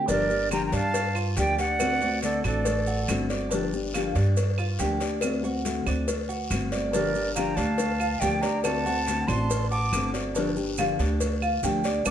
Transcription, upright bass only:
0.08 0.69 G1 medium
0.72 1.33 G2 medium
1.37 2.38 D2 medium
2.44 3.04 A1 medium
3.08 4.09 G1 medium
4.16 4.76 G2 loud
4.79 5.80 D2 medium
5.86 6.47 D2 medium
6.50 7.51 G1 medium
7.57 8.17 D2 medium
8.21 9.22 D2 medium
9.28 9.88 A1 loud
9.92 10.93 G1 medium
10.99 11.59 D2 loud
11.63 12.03 D2 medium
12.06 12.11 D2 medium

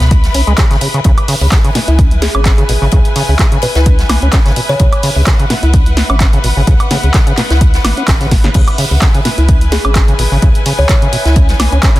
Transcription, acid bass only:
0.00 0.13 B2 medium
0.11 0.25 C#4 loud
0.24 0.30 E3 medium
0.35 0.42 C#4 medium
0.47 0.53 G#3 loud
0.58 0.65 C#3 medium
0.71 0.77 C#3 medium
0.81 0.88 C#3 medium
0.94 1.00 C#3 medium
1.05 1.12 C#3 loud
1.28 1.35 C#3 medium
1.41 1.47 C#3 medium
1.52 1.59 C#3 medium
1.65 1.70 C#3 loud
1.75 1.79 B2 medium
1.88 2.00 E4 medium
1.99 2.13 C#4 loud
2.11 2.17 E3 medium
2.35 2.41 C#4 medium
2.45 2.52 C#4 medium
2.58 2.64 C#3 medium
2.69 2.73 B2 medium
2.82 2.88 C#3 loud
2.92 2.99 C#3 loud
3.16 3.23 C#3 loud
3.29 3.34 C#3 medium
3.39 3.46 C#3 medium
3.52 3.58 C#3 loud
3.63 3.67 B2 medium
3.76 3.88 E4 medium
3.86 4.01 C#4 loud
3.99 4.05 E3 medium
4.22 4.28 C#4 medium
4.33 4.40 C#4 medium
4.46 4.52 C#3 medium
4.57 4.61 B2 medium
4.69 4.75 C#3 loud
4.80 4.87 C#3 loud
5.03 5.10 C#3 loud
5.16 5.22 C#3 medium
5.27 5.34 C#3 medium
5.40 5.45 C#3 loud
5.50 5.54 B2 medium
5.63 5.75 E4 medium
5.74 5.88 C#4 loud
5.86 5.92 E3 medium
6.10 6.16 C#4 medium
6.21 6.28 C#4 medium
6.33 6.39 C#3 medium
6.44 6.48 B2 medium
6.57 6.63 C#3 loud
6.67 6.74 C#3 loud
6.91 6.98 C#3 loud
7.04 7.10 C#3 medium
7.14 7.21 C#3 medium
7.27 7.33 C#3 loud
7.38 7.42 B2 medium
7.51 7.63 E4 medium
7.61 7.75 C#4 loud
7.74 7.80 E3 medium
7.97 8.03 C#4 medium
8.08 8.15 C#4 medium
8.21 8.27 C#3 medium
8.32 8.36 B2 medium
8.44 8.50 C#3 loud
8.55 8.62 C#3 loud
8.78 8.85 C#3 medium
8.91 8.97 C#3 medium
9.02 9.09 C#3 medium
9.15 9.20 C#3 loud
9.25 9.29 B2 medium
9.38 9.50 E4 medium
9.49 9.63 C#4 loud
9.61 9.67 E3 medium
9.85 9.91 C#4 medium
9.96 10.03 C#4 medium
10.08 10.14 C#3 medium
10.19 10.23 B2 medium
10.32 10.38 C#3 loud
10.43 10.49 C#3 loud
10.66 10.73 C#3 loud
10.79 10.84 C#3 medium
10.89 10.96 C#3 medium
11.02 11.08 C#3 loud
11.13 11.17 B2 medium
11.25 11.38 E4 medium
11.36 11.50 C#4 loud
11.49 11.55 E3 medium
11.72 11.78 C#4 medium
11.83 11.90 C#4 medium
11.96 12.00 C#3 loud

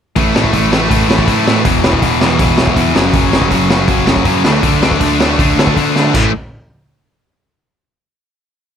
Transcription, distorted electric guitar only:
0.16 0.33 A2 medium
0.16 0.34 E3 loud
0.16 0.34 A3 loud
0.34 0.52 A2 medium
0.34 0.53 E3 medium
0.34 0.53 A3 medium
0.53 0.70 A2 medium
0.53 0.71 E3 medium
0.53 0.72 A3 medium
0.72 0.88 A2 medium
0.72 0.88 E3 medium
0.72 0.89 A3 medium
0.89 1.07 A2 medium
0.89 1.07 E3 medium
0.89 1.08 A3 medium
1.08 1.25 A2 medium
1.08 1.26 E3 medium
1.08 1.26 A3 medium
1.27 1.44 A2 medium
1.27 1.45 E3 medium
1.27 1.45 A3 medium
1.45 1.64 A2 medium
1.45 1.64 E3 medium
1.45 1.64 A3 medium
1.64 1.82 E2 loud
1.64 1.82 B2 loud
1.64 1.83 E3 loud
1.83 2.00 E2 medium
1.83 2.02 B2 medium
1.83 2.02 E3 medium
2.02 2.20 E2 medium
2.02 2.21 B2 medium
2.02 2.21 E3 medium
2.21 2.38 E2 medium
2.21 2.39 B2 medium
2.21 2.39 E3 loud
2.39 2.56 E2 medium
2.39 2.57 B2 medium
2.39 2.57 E3 loud
2.57 2.75 E2 medium
2.57 2.75 B2 medium
2.57 2.76 E3 medium
2.76 2.94 E2 medium
2.76 2.94 B2 medium
2.76 2.95 E3 medium
2.94 3.12 F#2 loud
2.94 3.13 C#3 medium
2.94 3.14 F#3 loud
3.13 3.30 F#2 medium
3.13 3.31 C#3 loud
3.13 3.33 F#3 medium
3.32 3.49 F#2 medium
3.32 3.49 C#3 medium
3.32 3.51 F#3 medium
3.50 3.68 F#2 medium
3.50 3.69 C#3 medium
3.50 3.70 F#3 medium
3.69 3.86 F#2 medium
3.69 3.87 C#3 loud
3.69 3.87 F#3 medium
3.87 4.05 F#2 medium
3.87 4.06 C#3 medium
3.87 4.06 F#3 loud
4.06 4.24 F#2 medium
4.06 4.25 C#3 medium
4.06 4.25 F#3 medium
4.25 4.44 F#2 medium
4.25 4.44 C#3 medium
4.25 4.44 F#3 medium
4.44 4.62 D3 loud
4.44 4.63 A3 loud
4.44 4.63 D4 loud
4.63 4.81 D3 medium
4.63 4.81 A3 medium
4.63 4.82 D4 loud
4.82 5.01 D3 medium
4.82 5.01 A3 medium
4.82 5.02 D4 medium
5.02 5.20 D3 medium
5.02 5.20 A3 medium
5.02 5.21 D4 medium
5.21 5.38 D3 medium
5.21 5.39 A3 medium
5.21 5.39 D4 loud
5.40 5.57 D3 medium
5.40 5.58 A3 medium
5.40 5.58 D4 loud
5.58 5.75 D3 medium
5.58 5.76 A3 medium
5.58 5.77 D4 medium
5.77 5.95 D3 medium
5.77 5.96 A3 medium
5.77 5.97 D4 medium
5.97 6.14 D3 medium
5.97 6.14 A3 medium
5.97 6.15 D4 medium
6.15 6.30 A2 medium
6.15 6.30 E3 medium
6.15 6.31 A3 medium

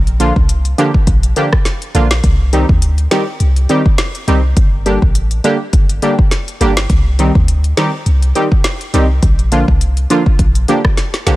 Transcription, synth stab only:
0.20 0.33 D3 medium
0.20 0.33 F3 medium
0.20 0.33 A#3 medium
0.20 0.33 D4 medium
0.20 0.33 F4 loud
0.78 0.91 D3 medium
0.78 0.91 F3 medium
0.78 0.91 A#3 medium
0.78 0.91 D4 medium
0.78 0.91 G4 loud
1.36 1.49 D3 medium
1.36 1.49 F3 medium
1.36 1.49 A#3 medium
1.36 1.49 D4 medium
1.36 1.49 G4 medium
1.94 2.08 D3 medium
1.94 2.08 F3 medium
1.94 2.08 A#3 medium
1.94 2.08 D4 medium
1.94 2.08 F4 loud
2.53 2.66 D#3 medium
2.53 2.66 G3 medium
2.53 2.66 C4 medium
2.53 2.66 D#4 medium
2.53 2.66 G4 medium
3.11 3.24 D#3 medium
3.11 3.24 G3 medium
3.11 3.24 C4 medium
3.11 3.24 D#4 medium
3.11 3.24 G4 loud
3.69 3.82 D#3 medium
3.69 3.82 G3 medium
3.69 3.82 C4 medium
3.69 3.82 D#4 medium
3.69 3.82 G4 loud
4.27 4.41 D#3 medium
4.27 4.41 G3 medium
4.27 4.41 C4 medium
4.27 4.41 D#4 medium
4.27 4.41 G4 loud
4.86 4.99 D3 medium
4.86 4.99 G3 medium
4.86 4.99 A#3 medium
4.86 4.99 D4 medium
4.86 4.99 G4 medium
5.44 5.57 D3 medium
5.44 5.57 G3 medium
5.44 5.57 A#3 medium
5.44 5.57 D4 medium
5.44 5.57 G4 loud
6.02 6.15 D3 medium
6.02 6.15 G3 medium
6.02 6.15 A#3 medium
6.02 6.15 D4 medium
6.02 6.15 G4 medium
6.61 6.74 D3 medium
6.61 6.74 G3 medium
6.61 6.74 A#3 medium
6.61 6.74 D4 medium
6.61 6.74 G4 loud
7.19 7.32 D#3 medium
7.19 7.32 G3 medium
7.19 7.32 C4 medium
7.19 7.32 D#4 medium
7.19 7.32 G4 medium
7.77 7.90 D#3 medium
7.77 7.90 G3 medium
7.77 7.90 C4 medium
7.77 7.90 D#4 medium
7.77 7.90 G4 loud
8.35 8.48 D#3 medium
8.35 8.48 G3 medium
8.35 8.48 C4 medium
8.35 8.48 D#4 medium
8.35 8.48 G4 medium
8.94 9.07 D#3 medium
8.94 9.07 G3 medium
8.94 9.07 C4 medium
8.94 9.07 D#4 medium
8.94 9.07 G4 loud
9.52 9.65 D3 medium
9.52 9.65 F3 medium
9.52 9.65 A#3 medium
9.52 9.65 D4 medium
9.52 9.65 F4 medium
10.10 10.23 D3 medium
10.10 10.23 F3 medium
10.10 10.23 A#3 medium
10.10 10.23 D4 medium
10.10 10.23 F4 loud
10.68 10.81 D3 medium
10.68 10.81 F3 medium
10.68 10.81 A#3 medium
10.68 10.81 D4 medium
10.68 10.82 G4 medium
11.26 11.36 D3 medium
11.26 11.36 F3 medium
11.26 11.36 A#3 medium
11.26 11.36 D4 medium
11.26 11.36 G4 loud

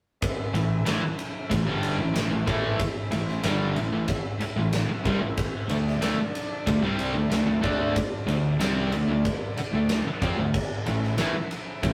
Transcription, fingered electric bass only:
0.54 0.84 A1 medium
0.85 1.01 A1 medium
1.03 muted fingered electric bass stroke soft
1.51 1.66 A1 medium
1.67 1.97 G1 medium
1.98 2.14 A1 medium
2.14 2.30 A1 medium
2.31 2.46 A1 medium
2.48 2.78 A1 medium
2.79 muted fingered electric bass stroke soft
3.10 3.41 A1 medium
3.44 3.74 G1 medium
3.75 3.91 A1 medium
3.91 4.07 A1 medium
4.40 muted fingered electric bass stroke soft
4.56 4.86 A1 medium
4.87 muted fingered electric bass stroke soft
5.06 5.19 C2 medium
5.19 5.35 A1 medium
5.68 5.99 D2 medium
6.01 6.17 D2 medium
6.17 muted fingered electric bass stroke soft
6.67 6.81 D2 medium
6.82 7.12 C2 medium
7.14 7.29 D2 medium
7.30 7.45 D2 medium
7.47 7.62 D2 medium
7.63 7.93 D2 medium
7.96 muted fingered electric bass stroke soft
8.27 8.57 D2 medium
8.59 8.90 C2 medium
8.92 9.07 D2 medium
9.08 9.23 D2 medium
9.58 muted fingered electric bass stroke soft
9.74 10.03 D2 medium
10.06 muted fingered electric bass stroke soft
10.22 10.36 F2 medium
10.38 10.53 D2 medium
10.87 11.16 A1 medium
11.19 11.33 A1 medium
11.35 muted fingered electric bass stroke soft
11.83 11.93 A1 medium

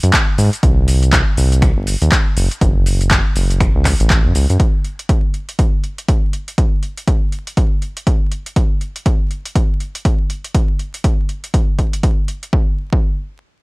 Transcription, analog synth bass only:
0.03 0.11 F#2 loud
0.38 0.50 G#2 loud
0.63 1.22 C2 loud
1.37 1.72 C2 medium
1.77 1.96 G1 medium
2.02 2.10 D#2 loud
2.37 2.48 F#1 loud
2.61 3.21 F#1 medium
3.36 3.70 F#1 medium
3.75 3.94 C#2 medium
4.00 4.26 A1 loud
4.25 4.33 F#2 medium
4.35 4.47 C#2 medium
4.50 4.58 F#2 medium

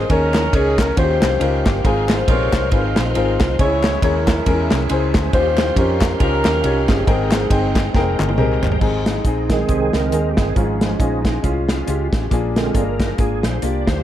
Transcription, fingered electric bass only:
0.10 0.47 D#2 loud
0.53 0.91 C#2 medium
0.97 1.19 D#2 loud
1.22 1.38 C2 medium
1.41 1.62 C#2 medium
1.66 1.82 G1 medium
1.85 2.22 G#1 loud
2.28 2.50 A#1 medium
2.53 2.69 C2 medium
2.72 2.93 G#1 loud
2.97 3.13 A#1 loud
3.16 3.37 G#1 loud
3.41 3.57 C2 medium
3.59 3.96 C#2 loud
4.03 4.40 D#2 medium
4.46 4.68 E2 loud
4.72 4.87 C2 medium
4.91 5.12 C#2 medium
5.15 5.31 D2 medium
5.34 5.71 D#2 loud
5.76 6.14 F2 medium
6.21 6.42 C#2 loud
6.46 6.61 D#2 medium
6.64 6.85 C2 medium
6.89 7.05 G1 medium
7.07 7.44 G#1 loud
7.51 7.88 G1 medium
7.95 8.16 F1 medium
8.20 8.35 G1 medium
8.38 8.59 C2 medium
8.63 8.79 G1 medium
8.81 9.19 G#1 medium
9.25 9.62 A#1 medium
9.69 9.90 C2 medium
9.94 10.10 C#2 medium
10.13 10.34 D#2 medium
10.38 10.54 G1 medium
10.56 10.94 G#1 loud
11.00 11.37 A#1 medium
11.44 11.81 C2 medium
11.88 12.09 C#2 medium
12.13 12.29 A1 medium
12.31 12.69 A#1 loud
12.75 13.12 G1 medium
13.19 13.40 G#1 medium
13.44 13.60 A#1 medium
13.63 13.84 C2 medium
13.87 14.03 D2 medium

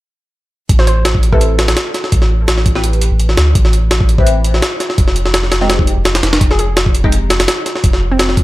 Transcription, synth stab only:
1.33 2.73 C4 medium
1.33 2.73 E4 medium
1.33 2.73 G4 medium
1.33 2.73 B4 loud
2.76 4.16 C4 loud
2.76 4.16 E4 medium
2.76 4.16 G4 medium
2.76 4.16 B4 loud
4.18 4.97 C4 medium
4.18 4.97 E4 medium
4.18 4.97 G4 medium
4.18 4.97 B4 loud
5.61 7.02 G#3 loud
5.61 7.02 C4 medium
5.61 7.02 D#4 medium
5.61 7.02 G4 loud
7.04 8.44 G#3 medium
7.04 8.44 C4 medium
7.04 8.44 D#4 medium
7.04 8.44 G4 loud

